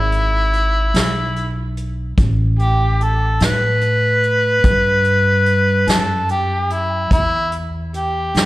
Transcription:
Already playing: G#1 E4
0.12 closed hi-hat
0.53 closed hi-hat
0.94 B1, snare, closed hi-hat
1.36 closed hi-hat
1.77 closed hi-hat
2.17 A1, kick, closed hi-hat
2.59 G4, closed hi-hat
3.01 A4, closed hi-hat
3.40 A2, snare, closed hi-hat
3.44 B4
3.81 closed hi-hat
4.23 closed hi-hat
4.64 G2, kick, closed hi-hat
5.04 closed hi-hat
5.46 closed hi-hat
5.87 F#2 A4, snare, closed hi-hat
6.29 G4, closed hi-hat
6.70 E4, closed hi-hat
7.11 E2 E4, kick, closed hi-hat
7.52 closed hi-hat
7.94 G4, closed hi-hat
8.35 G2, snare, closed hi-hat

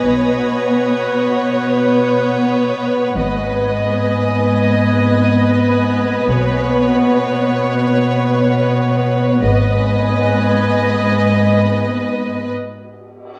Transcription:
Already playing: B3 B4 D#6 G#6 A#6
0.04 B1 B2 C#5 F#5
1.52 G6
3.17 G#1 G#2 B3 B4 D#5 G#5
6.28 B1 B2 C#5 F#5
9.42 G#1 G#2 B3 B4 D#5 G#5
12.54 cymbal swell

